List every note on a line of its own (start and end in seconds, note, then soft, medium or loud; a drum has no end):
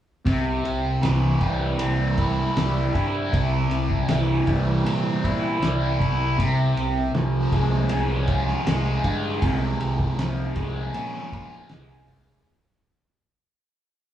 0.26 0.58 C2 loud
0.26 2.18 C3 medium
0.26 kick loud
0.26 ride medium
0.64 0.96 C2 medium
0.64 ride medium
1.02 1.34 C2 medium
1.02 2.94 E3 medium
1.02 snare loud
1.02 ride medium
1.40 1.72 C2 medium
1.40 2.56 G3 medium
1.40 kick medium
1.40 ride medium
1.79 2.42 C2 medium
1.79 3.71 C4 medium
1.79 ride loud
2.17 2.93 E4 medium
2.17 kick medium
2.17 ride medium
2.56 2.87 C2 loud
2.56 4.46 G3 medium
2.56 snare loud
2.56 ride loud
2.95 3.26 G2 loud
2.95 4.85 E4 medium
2.95 kick medium
2.95 ride medium
3.33 3.64 C2 medium
3.33 5.24 C3 medium
3.33 kick loud
3.33 ride medium
3.69 4.01 C2 medium
3.69 ride medium
3.90 kick medium
4.07 4.39 C2 medium
4.07 6.00 E3 medium
4.07 snare loud
4.07 ride medium
4.47 4.78 C2 medium
4.47 5.60 G3 medium
4.47 kick medium
4.47 ride medium
4.84 5.16 A#2 medium
4.84 6.38 C4 medium
4.84 ride loud
5.24 5.55 A#2 medium
5.24 5.97 E4 medium
5.24 kick medium
5.24 ride medium
5.60 6.39 C2 medium
5.60 6.38 G3 medium
5.60 snare loud
5.60 ride medium
5.99 6.37 E4 medium
5.99 kick medium
5.99 ride medium
6.38 6.70 C2 loud
6.38 8.28 C3 medium
6.38 kick loud
6.38 ride medium
6.76 7.07 C2 medium
6.76 ride medium
7.13 7.45 C2 medium
7.13 10.17 F3 medium
7.13 snare loud
7.13 ride medium
7.52 7.83 C2 medium
7.52 8.66 G#3 medium
7.52 kick medium
7.52 ride medium
7.89 8.52 C2 medium
7.89 9.80 C#4 medium
7.89 ride loud
8.28 9.03 F4 medium
8.28 kick medium
8.28 ride medium
8.48 snare soft
8.66 8.97 C2 medium
8.66 10.54 G#3 medium
8.66 snare loud
8.66 ride loud
9.04 9.35 G2 medium
9.04 10.94 F4 medium
9.04 kick medium
9.04 ride medium
9.42 9.73 C2 medium
9.42 11.32 C3 medium
9.42 kick loud
9.42 ride medium
9.79 10.11 C2 medium
9.79 ride medium
9.99 kick medium
10.17 10.49 C2 medium
10.17 12.08 F3 medium
10.17 snare loud
10.17 ride medium
10.56 10.87 C2 medium
10.56 11.69 G#3 medium
10.56 kick medium
10.56 ride medium
10.93 11.25 A#2 medium
10.93 12.46 C#4 medium
10.93 ride medium
11.32 11.63 A#2 medium
11.32 12.07 F4 medium
11.32 kick medium
11.32 ride medium
11.52 snare soft
11.69 12.33 C2 medium
11.69 12.46 G#3 medium
11.69 snare loud
11.69 ride medium
12.08 12.47 F4 medium
12.08 kick medium
12.08 ride medium